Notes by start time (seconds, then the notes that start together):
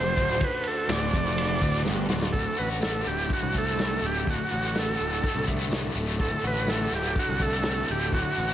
Already playing: F1 D2 F2 D4 F#4 A4 C5
0.05 tambourine
0.17 D1 D2, kick, ride, tambourine
0.41 B4, kick, ride, tambourine
0.53 tambourine
0.63 ride, tambourine
0.68 A4
0.78 tambourine
0.89 D1 D2 D5, snare, ride, tambourine
1.13 F1 F2, kick, ride, tambourine
1.26 tambourine
1.37 ride, tambourine
1.48 tambourine
1.61 D1 D2, kick, ride, tambourine
1.73 tambourine
1.85 G1 G2, snare, tambourine
1.97 tambourine
2.09 D1 D2, snare, tambourine
2.22 snare, tambourine
2.31 D1 D2 F#3 D4 A4, kick, open hi-hat
2.57 A1 F#4 B4, open hi-hat
2.80 A3 A4, snare, open hi-hat, tambourine
3.04 D1 A2 G4, open hi-hat
3.29 D3, kick, open hi-hat
3.33 F#4
3.43 C2
3.53 A3, kick, open hi-hat
3.58 A4
3.77 A2, snare, open hi-hat, tambourine
4.01 D1 A3, open hi-hat
4.06 G4
4.27 D1 D2 F#4, kick, open hi-hat
4.51 A1 F#4, open hi-hat
4.74 A3, snare, open hi-hat, tambourine
4.79 A4
4.99 D1 A2, open hi-hat
5.22 D3, kick, open hi-hat
5.36 C2
5.47 A3, kick, open hi-hat
5.71 A2, snare, open hi-hat, tambourine
5.95 D1 A3, open hi-hat
6.19 D1 D2 A4, kick, open hi-hat
6.44 A1 F#4 B4, open hi-hat
6.67 A3 A4, snare, open hi-hat, tambourine
6.92 D1 A2 G4, snare, open hi-hat
7.16 D3 F#4, kick, open hi-hat
7.29 C2
7.40 A3 A4, kick, open hi-hat
7.63 A2, snare, open hi-hat, tambourine
7.88 D1 A3 G4, open hi-hat
8.13 D1 D2 F#4, kick, open hi-hat
8.36 A1 F#4, open hi-hat